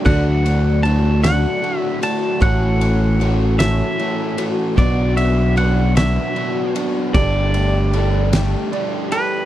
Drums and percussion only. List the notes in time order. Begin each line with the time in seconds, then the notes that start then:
0.06 kick, crash
0.46 ride
0.85 ride
1.24 snare, ride
1.64 ride
2.03 ride
2.42 kick, ride
2.81 ride
3.21 ride
3.60 snare, ride
3.99 ride
4.38 ride
4.78 kick, ride
5.17 ride
5.57 ride
5.97 snare, ride
6.36 ride
6.76 ride
7.15 kick, ride
7.54 ride
7.93 ride
8.33 snare, ride
8.73 ride
9.12 ride